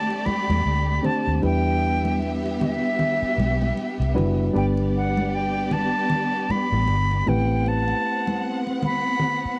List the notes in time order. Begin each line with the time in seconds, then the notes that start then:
Already playing: A3 C4 D4 G4 C5 D5 A5
0.10 muted conga
0.26 B5, muted fingered electric bass stroke, high conga
0.50 E2, high conga
0.66 D2
1.02 A3 C4 D4 G4 C5 A5, low conga
1.27 D#2
1.42 E2 G3 B3 D4 E4 G4 B4 E5 G5, muted conga
2.05 high conga
2.22 muted conga
2.46 muted conga
2.61 E5, high conga, low conga
2.99 low conga
3.22 muted fingered electric bass stroke
3.38 B1, high conga
3.62 high conga
3.77 muted conga
4.00 C2, muted conga
4.14 F#1 G3 D4 E4 F#4 B4, low conga
4.53 G1 G3 B3 D4 G4 B4 D5, muted conga
4.57 G5
4.77 muted conga
4.96 F#5
5.17 high conga
5.34 G5
5.71 A5, high conga, low conga
6.10 low conga
6.50 B5, muted fingered electric bass stroke, high conga
6.72 A1, high conga
6.88 G1, muted conga
7.11 muted conga
7.26 A1 A3 B3 C4 E4 G4 B4 F#5 G5, low conga
7.66 A5, muted conga
7.88 muted conga
8.27 high conga
8.67 muted conga
8.83 B5, high conga, low conga
9.20 low conga
9.45 muted fingered electric bass stroke